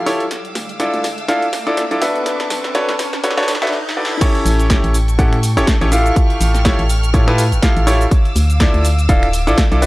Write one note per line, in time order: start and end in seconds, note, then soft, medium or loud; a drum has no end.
0.00 0.26 A1 loud
0.00 0.27 A4 medium
0.00 0.27 G5 medium
0.00 0.27 C#6 medium
0.00 0.29 F6 medium
0.00 riser medium
0.06 0.23 E4 medium
0.06 0.23 F4 medium
0.06 0.23 G4 medium
0.06 0.23 A4 medium
0.06 0.23 C#5 loud
0.06 open hi-hat loud
0.20 closed hi-hat soft
0.31 2.00 F5 medium
0.31 3.69 D6 medium
0.31 2.00 E6 medium
0.31 snare medium
0.31 closed hi-hat medium
0.45 closed hi-hat soft
0.55 0.87 D2 loud
0.55 snare medium
0.55 open hi-hat loud
0.69 closed hi-hat soft
0.80 1.04 D4 medium
0.80 1.04 E4 medium
0.80 1.04 F4 medium
0.80 1.04 A4 medium
0.80 1.04 D5 medium
0.80 snare medium
0.80 closed hi-hat medium
0.93 1.30 D2 medium
0.93 closed hi-hat soft
1.04 snare medium
1.04 open hi-hat loud
1.18 closed hi-hat soft
1.28 1.68 D1 loud
1.28 1.45 D4 loud
1.28 1.45 E4 medium
1.28 1.45 F4 medium
1.28 1.45 A4 medium
1.28 1.45 F5 loud
1.28 snare medium
1.28 closed hi-hat medium
1.42 closed hi-hat soft
1.53 snare medium
1.53 open hi-hat loud
1.67 1.74 A1 loud
1.67 1.81 D4 loud
1.67 1.81 E4 medium
1.67 1.81 F4 medium
1.67 1.81 A4 medium
1.67 1.81 D5 loud
1.67 closed hi-hat soft
1.77 snare medium
1.77 closed hi-hat medium
1.91 2.21 B1 loud
1.91 2.00 D4 medium
1.91 2.00 E4 medium
1.91 2.00 F4 medium
1.91 2.00 A4 medium
1.91 2.00 D5 medium
1.91 closed hi-hat soft
2.02 2.72 D4 medium
2.02 2.72 F#4 medium
2.02 2.72 A4 medium
2.02 2.72 B4 medium
2.02 3.71 B4 medium
2.02 2.72 E5 medium
2.02 3.71 A5 medium
2.02 3.71 C#6 medium
2.02 snare medium
2.02 open hi-hat loud
2.16 closed hi-hat soft
2.26 snare medium
2.26 closed hi-hat medium
2.40 snare medium
2.40 closed hi-hat soft
2.50 2.82 B1 loud
2.50 snare loud
2.50 open hi-hat loud
2.64 snare medium
2.64 closed hi-hat soft
2.75 2.91 D4 medium
2.75 2.91 F#4 medium
2.75 2.91 A4 medium
2.75 2.91 B4 medium
2.75 2.91 C#5 loud
2.75 snare medium
2.75 closed hi-hat medium
2.89 3.25 B1 medium
2.89 snare medium
2.89 closed hi-hat soft
2.99 snare medium
2.99 open hi-hat loud
3.13 snare medium
3.13 closed hi-hat soft
3.23 3.63 F#1 loud
3.23 3.35 D4 medium
3.23 3.35 F#4 medium
3.23 3.35 A4 medium
3.23 3.35 B4 medium
3.23 3.35 C#5 medium
3.23 snare loud
3.23 closed hi-hat medium
3.31 snare medium
3.37 3.51 D4 loud
3.37 3.51 F#4 medium
3.37 3.51 A4 medium
3.37 3.51 B4 medium
3.37 3.51 C#5 loud
3.37 snare medium
3.37 closed hi-hat soft
3.43 snare medium
3.48 snare loud
3.48 open hi-hat loud
3.55 snare medium
3.62 3.76 D4 medium
3.62 3.76 F#4 medium
3.62 3.76 A4 medium
3.62 3.76 B4 medium
3.62 3.76 E5 loud
3.62 snare medium
3.62 closed hi-hat soft
3.67 snare medium
3.72 snare medium
3.89 snare medium
3.97 4.13 D4 medium
3.97 4.13 F#4 medium
3.97 4.13 A4 medium
3.97 4.13 B4 medium
3.97 4.13 D5 medium
4.05 snare loud
4.21 4.66 C#4 loud
4.21 4.66 E4 medium
4.21 4.66 G4 medium
4.21 4.66 A4 medium
4.21 8.08 A4 medium
4.21 4.66 C#5 loud
4.21 8.08 G5 medium
4.21 8.08 C#6 medium
4.21 kick loud
4.21 closed hi-hat loud
4.21 crash loud
4.21 shaker soft
4.35 closed hi-hat soft
4.46 4.77 A1 loud
4.46 open hi-hat loud
4.46 shaker medium
4.60 closed hi-hat soft
4.60 shaker soft
4.70 4.94 C#4 medium
4.70 4.94 E4 medium
4.70 4.94 G4 medium
4.70 4.94 A4 medium
4.70 4.94 C#5 medium
4.70 kick loud
4.70 snare loud
4.70 closed hi-hat medium
4.70 shaker soft
4.84 5.20 A1 medium
4.84 closed hi-hat soft
4.94 open hi-hat loud
4.94 shaker medium
5.08 closed hi-hat soft
5.08 shaker soft
5.19 5.58 A2 loud
5.19 5.35 C#4 loud
5.19 5.35 E4 medium
5.19 5.35 G4 medium
5.19 5.35 A4 medium
5.19 5.35 F#5 loud
5.19 kick loud
5.19 closed hi-hat medium
5.19 shaker soft
5.33 finger snap medium
5.33 closed hi-hat soft
5.43 open hi-hat loud
5.43 shaker medium
5.57 5.64 G1 loud
5.57 5.71 C#4 loud
5.57 5.71 E4 medium
5.57 5.71 G4 medium
5.57 5.71 A4 medium
5.57 5.71 C#5 loud
5.57 closed hi-hat soft
5.57 shaker soft
5.67 kick loud
5.67 snare loud
5.67 closed hi-hat loud
5.67 shaker soft
5.81 6.11 A1 loud
5.81 5.90 C#4 medium
5.81 5.90 E4 medium
5.81 5.90 G4 medium
5.81 5.90 A4 medium
5.81 5.90 C#5 medium
5.81 closed hi-hat soft
5.92 6.63 E4 medium
5.92 6.63 F4 medium
5.92 6.63 G4 medium
5.92 6.63 A4 medium
5.92 6.63 F5 medium
5.92 8.09 F6 medium
5.92 open hi-hat loud
5.92 shaker medium
6.06 closed hi-hat soft
6.06 shaker soft
6.16 kick loud
6.16 closed hi-hat medium
6.16 shaker soft
6.30 closed hi-hat soft
6.41 6.72 A1 loud
6.41 open hi-hat loud
6.41 shaker medium
6.54 snare soft
6.54 closed hi-hat soft
6.54 shaker soft
6.65 6.81 E4 medium
6.65 6.81 F4 medium
6.65 6.81 G4 medium
6.65 6.81 A4 medium
6.65 6.81 C#5 loud
6.65 kick loud
6.65 snare loud
6.65 closed hi-hat medium
6.65 shaker soft
6.79 7.15 A1 medium
6.79 closed hi-hat soft
6.89 open hi-hat loud
6.89 shaker medium
7.03 closed hi-hat soft
7.03 shaker soft
7.14 7.54 A2 loud
7.14 7.26 E4 medium
7.14 7.26 F4 medium
7.14 7.26 G4 medium
7.14 7.26 A4 medium
7.14 7.26 C#5 medium
7.14 kick loud
7.14 closed hi-hat medium
7.14 shaker soft
7.28 7.42 E4 loud
7.28 7.42 F4 medium
7.28 7.42 G4 medium
7.28 7.42 A4 medium
7.28 7.42 B4 loud
7.28 finger snap medium
7.28 closed hi-hat soft
7.38 open hi-hat loud
7.38 shaker medium
7.52 7.59 G1 loud
7.52 closed hi-hat soft
7.52 shaker soft
7.62 7.84 E4 medium
7.62 7.84 F4 medium
7.62 7.84 G4 medium
7.62 7.84 A4 medium
7.62 7.84 F5 medium
7.62 kick loud
7.62 snare loud
7.62 closed hi-hat medium
7.62 shaker soft
7.76 8.06 A1 loud
7.76 closed hi-hat soft
7.87 8.03 E4 medium
7.87 8.03 F4 medium
7.87 8.03 G4 medium
7.87 8.03 A4 medium
7.87 8.03 C#5 loud
7.87 open hi-hat loud
7.87 shaker medium
8.01 closed hi-hat soft
8.01 shaker soft
8.11 9.80 F5 medium
8.11 9.86 D6 medium
8.11 9.80 E6 medium
8.11 kick loud
8.11 closed hi-hat medium
8.11 shaker soft
8.25 closed hi-hat soft
8.36 8.67 D2 loud
8.36 open hi-hat loud
8.36 shaker medium
8.50 closed hi-hat soft
8.50 shaker soft
8.60 8.84 D4 medium
8.60 8.84 E4 medium
8.60 8.84 F4 medium
8.60 8.84 A4 medium
8.60 8.84 D5 medium
8.60 kick loud
8.60 snare loud
8.60 closed hi-hat medium
8.60 shaker soft
8.74 9.10 D2 medium
8.74 closed hi-hat soft
8.85 open hi-hat loud
8.85 shaker medium
8.99 closed hi-hat soft
8.99 shaker soft
9.09 9.49 D1 loud
9.09 9.25 D4 loud
9.09 9.25 E4 medium
9.09 9.25 F4 medium
9.09 9.25 A4 medium
9.09 9.25 F5 loud
9.09 kick loud
9.09 closed hi-hat medium
9.09 shaker soft
9.23 finger snap medium
9.23 closed hi-hat soft
9.33 open hi-hat loud
9.33 shaker medium
9.47 9.55 A1 loud
9.47 9.61 D4 medium
9.47 9.61 E4 medium
9.47 9.61 F4 medium
9.47 9.61 A4 medium
9.47 9.61 D5 loud
9.47 closed hi-hat soft
9.47 shaker soft
9.58 kick loud
9.58 snare loud
9.58 closed hi-hat medium
9.58 shaker soft
9.72 9.86 B1 loud
9.72 9.81 D4 medium
9.72 9.81 E4 medium
9.72 9.81 F4 medium
9.72 9.81 A4 medium
9.72 9.81 D5 medium
9.72 closed hi-hat soft
9.82 9.86 D4 medium
9.82 9.86 F#4 medium
9.82 9.86 A4 medium
9.82 9.86 B4 medium
9.82 9.86 E5 medium
9.82 9.86 A5 medium
9.82 9.86 C#6 medium
9.82 open hi-hat loud
9.82 shaker medium